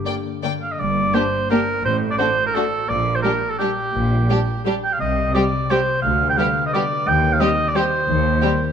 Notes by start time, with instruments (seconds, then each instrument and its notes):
Already playing: harp G2 D3 A#3, clarinet G4
0.06 viola section A#3, harp G4, violin section D5 G5
0.25 harp A#3
0.43 harp D3, viola section A#3, violin section D5 G5
0.62 harp A#3, oboe F5
0.72 oboe D#5
0.79 double bass section G1, harp G2, cello section G2, oboe D5
0.96 harp A#3
1.13 viola section A#3, violin section D4 G4, harp G4, oboe C5
1.32 harp D5
1.50 viola section A#3, violin section D4 G4, oboe A#4
1.68 harp D5
1.85 double bass section A1, cello section A2, harp A2, oboe C5
2.02 harp A3
2.11 oboe D5
2.18 viola section A3, violin section D4 F#4, harp F#4, oboe C5
2.46 oboe A#4
2.54 viola section A3, violin section D4 F#4, harp F#4, oboe A4
2.72 harp D5
2.89 double bass section A#1, harp A#2, cello section A#2, oboe D5
3.07 harp G3
3.15 oboe C5
3.22 viola section G3, violin section D4 G4, oboe A#4
3.43 harp D5
3.50 oboe A4
3.59 viola section G3, violin section D4 G4, oboe G4
3.79 harp D5
3.94 double bass section A#1, cello section A#2, harp A#2
4.12 harp G3
4.30 viola section G3, violin section D4 G4
4.48 harp D5
4.65 viola section G3, violin section D4 G4
4.83 harp D5, oboe G5
4.93 oboe F5
5.00 double bass section C2, cello section C3, harp C3, oboe D#5
5.17 harp G3
5.34 viola section G3, violin section C4 G4, oboe D5
5.53 harp C5
5.70 viola section G3, violin section C4 G4, oboe C5
6.02 double bass section D2, cello section D2, harp D3, oboe F5
6.21 harp G3
6.29 oboe G5
6.37 viola section G3, violin section B3 G4, harp G4, oboe F5
6.56 harp B4
6.66 oboe D#5
6.73 viola section G3, violin section B3 G4, harp G4, oboe D5
6.91 harp B4
7.07 cello section D#2, double bass section D#2, harp D#3, oboe G5
7.23 harp G3
7.33 oboe F5
7.40 viola section G3, violin section C4 G4, oboe D#5
7.58 harp C5
7.68 oboe D5
7.75 viola section G3, violin section C4 G4, oboe C5
7.93 harp C5
8.08 double bass section D#2, cello section D#2, harp D#3
8.25 harp G3
8.42 viola section G3, violin section C4 G4
8.61 harp C5